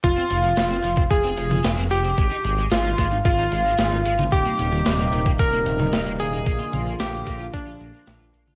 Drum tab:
HH |xxxxxxxxxxxxxxxx|xxxxxxxxxxxxxxxx|xxxxxxxxxxxxxxxx|xxxxxxxxxxxxxxxx|
SD |----o-------o---|----o-o-----o---|----o-------o---|----o-o-----o---|
T2 |-----------o----|---------------o|-----------o----|--o------------o|
BD |o------oo-------|o-----o-o-------|o------oo-------|o-----o-o-------|